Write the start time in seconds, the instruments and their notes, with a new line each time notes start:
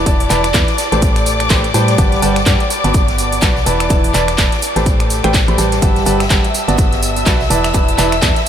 Already playing: string section D5 D6
0.06 fm bass E1, grand piano E3 E4 B4 D5 A5, kick, closed hi-hat, tambourine, shaker
0.20 open hi-hat, tambourine
0.30 fm bass E1, grand piano E3 E4 B4 D5 A5, clap, open hi-hat, tambourine, shaker
0.44 finger snap, snare, closed hi-hat, tambourine
0.54 fm bass E2, grand piano E3 E4 B4 D5 A5, kick, snare, clap, closed hi-hat, tambourine, shaker
0.68 snare, closed hi-hat, tambourine
0.78 snare, open hi-hat, tambourine, shaker
0.92 fm bass A1, grand piano A3 G4 B4 C5 A5, closed hi-hat, tambourine
1.02 kick, closed hi-hat, tambourine, shaker
1.16 finger snap, closed hi-hat, tambourine
1.25 snare, open hi-hat, tambourine, shaker
1.40 finger snap, closed hi-hat, tambourine
1.50 fm bass A1, grand piano A3 G4 B4 C5 C6, kick, snare, clap, closed hi-hat, tambourine, shaker
1.64 closed hi-hat, tambourine
1.74 fm bass A2, grand piano G3 G4 B4 C5 A5, snare, open hi-hat, tambourine, shaker
1.88 snare, closed hi-hat, tambourine
1.98 fm bass G1, grand piano G3 G4 B4 F#5 A5, kick, closed hi-hat, tambourine, shaker
2.12 snare, closed hi-hat, tambourine
2.22 fm bass G1, grand piano G3 G4 B4 F#5 A5, open hi-hat, tambourine, shaker
2.36 finger snap, snare, closed hi-hat, tambourine
2.46 fm bass G2, grand piano G3 G4 B4 F#5 A5, kick, snare, clap, closed hi-hat, tambourine, shaker
2.60 closed hi-hat, tambourine
2.70 open hi-hat, tambourine, shaker
2.84 fm bass G1, grand piano B3 F#4 B4 D5 A5, closed hi-hat, tambourine
2.94 kick, closed hi-hat, tambourine, shaker
3.08 snare, closed hi-hat, tambourine
3.18 open hi-hat, tambourine, shaker
3.32 open hi-hat, tambourine
3.41 fm bass B1, grand piano F#4 B4 D5 A5, kick, snare, clap, closed hi-hat, tambourine, shaker
3.56 snare, tambourine
3.66 fm bass E1, grand piano E3 E4 B4 D5 A5, open hi-hat, tambourine, shaker
3.80 finger snap, closed hi-hat, tambourine
3.90 fm bass E1, grand piano E3 E4 B4 D5 A5, kick, closed hi-hat, tambourine, shaker
4.04 open hi-hat, tambourine
4.14 fm bass E1, grand piano E3 E4 B4 D5 A5, clap, open hi-hat, tambourine, shaker
4.28 finger snap, snare, closed hi-hat, tambourine
4.38 fm bass E1, grand piano E3 E4 B4 D5 A5, kick, snare, clap, closed hi-hat, tambourine, shaker
4.52 snare, closed hi-hat, tambourine
4.62 open hi-hat, tambourine, shaker
4.76 fm bass A1, grand piano A3 G4 B4 C5 A5, snare, closed hi-hat, tambourine
4.86 kick, closed hi-hat, tambourine, shaker
5.00 finger snap, closed hi-hat, tambourine
5.10 snare, open hi-hat, tambourine, shaker
5.24 fm bass A1, grand piano A3 G4 B4 C5 G5, finger snap, closed hi-hat, tambourine
5.34 kick, snare, clap, closed hi-hat, tambourine, shaker
5.48 fm bass A1, grand piano A3 G4 B4 C5 B5, closed hi-hat, tambourine
5.58 fm bass A1, grand piano G3 G4 B4 C5 A5, snare, open hi-hat, tambourine, shaker
5.72 snare, closed hi-hat, tambourine
5.82 fm bass G1, grand piano G3 G4 B4 F#5 A5, string section E5 E6, kick, closed hi-hat, tambourine, shaker
5.96 snare, closed hi-hat, tambourine
6.06 fm bass G1, grand piano G3 G4 B4 F#5 A5, open hi-hat, tambourine, shaker
6.20 finger snap, snare, closed hi-hat, tambourine
6.30 fm bass G1, grand piano G3 G4 B4 F#5 A5, kick, snare, clap, closed hi-hat, tambourine, shaker
6.44 closed hi-hat, tambourine
6.54 open hi-hat, tambourine, shaker
6.68 fm bass G1, grand piano B3 F#4 B4 D5 A5, closed hi-hat, tambourine
6.78 kick, closed hi-hat, tambourine, shaker
6.92 snare, closed hi-hat, tambourine
7.02 open hi-hat, tambourine, shaker
7.16 open hi-hat, tambourine
7.26 fm bass B1, grand piano F#4 B4 D5 A5, kick, snare, clap, closed hi-hat, tambourine, shaker
7.41 snare, tambourine
7.50 fm bass E1, grand piano E3 E4 B4 D5 A5, open hi-hat, tambourine, shaker
7.64 finger snap, snare, closed hi-hat, tambourine
7.74 fm bass E1, grand piano E3 E4 B4 D5 A5, kick, closed hi-hat, tambourine, shaker
7.88 open hi-hat, tambourine
7.98 fm bass E1, grand piano E3 E4 B4 D5 A5, clap, open hi-hat, tambourine, shaker
8.11 finger snap, snare, closed hi-hat, tambourine
8.22 fm bass E2, grand piano E3 E4 B4 D5 A5, kick, snare, clap, closed hi-hat, tambourine, shaker
8.36 snare, closed hi-hat, tambourine